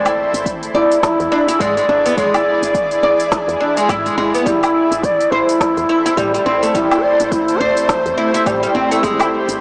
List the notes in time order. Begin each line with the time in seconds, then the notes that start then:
Already playing: G#1 E4 G#4 D5
0.05 E4, open hi-hat, low woodblock, shaker
0.34 G#1, open hi-hat, shaker
0.46 kick, open hi-hat, shaker
0.63 open hi-hat, shaker
0.74 G#1 E4 D5
0.92 open hi-hat, shaker
1.02 E4, kick, snare, open hi-hat, shaker
1.20 E2, open hi-hat, shaker
1.32 D4
1.48 E4, open hi-hat, shaker
1.60 G#2 G#3 D5, kick, open hi-hat, shaker
1.77 G#3, open hi-hat, shaker
1.89 G#1 D4
2.06 B3, open hi-hat, shaker
2.17 G#1 G#3 D5, kick, open hi-hat, shaker
2.34 E4, open hi-hat, low woodblock, shaker
2.62 G#1, open hi-hat, shaker
2.75 kick, open hi-hat, shaker
2.91 open hi-hat, shaker
3.03 G#1 D5
3.20 open hi-hat, shaker
3.32 kick, snare, open hi-hat, shaker
3.48 E2, open hi-hat, shaker
3.61 D4
3.77 G#3, open hi-hat, shaker
3.89 G#2 E4, kick, open hi-hat, low woodblock, shaker
4.06 G#3, open hi-hat, shaker
4.18 G#1 G#3
4.35 B3, open hi-hat, shaker
4.46 A1 G3 A3 E4 A4 C5, kick, open hi-hat, shaker
4.63 E4, open hi-hat, low woodblock, shaker
4.92 A1, open hi-hat, shaker
5.03 D5, kick, open hi-hat, shaker
5.21 open hi-hat, shaker
5.32 A1 E4 C5
5.49 open hi-hat, shaker
5.61 kick, snare, open hi-hat, shaker
5.77 E2, open hi-hat, shaker
5.89 E4
6.06 E4, open hi-hat, shaker
6.17 A2 G3, kick, open hi-hat, shaker
6.34 G3, open hi-hat, shaker
6.46 A1 C4
6.63 A3, open hi-hat, shaker
6.75 A1 G3 E4 G4, kick, open hi-hat, shaker
6.91 E4, open hi-hat, low woodblock, shaker
7.03 D5
7.20 A1, open hi-hat, shaker
7.32 E4, kick, open hi-hat, shaker
7.48 open hi-hat, shaker
7.60 A1 C5 D5
7.77 open hi-hat, shaker
7.89 C5, kick, snare, open hi-hat, shaker
8.06 E2, open hi-hat, shaker
8.18 E4
8.34 E4, open hi-hat, shaker
8.46 A2 G3, kick, open hi-hat, low woodblock, shaker
8.63 G3, open hi-hat, shaker
8.75 A1 C4
8.91 A3, open hi-hat, shaker
9.03 G#1 G#3 B3 D4 E4, kick, open hi-hat, shaker
9.20 E4, open hi-hat, low woodblock, shaker
9.48 G#1, open hi-hat, shaker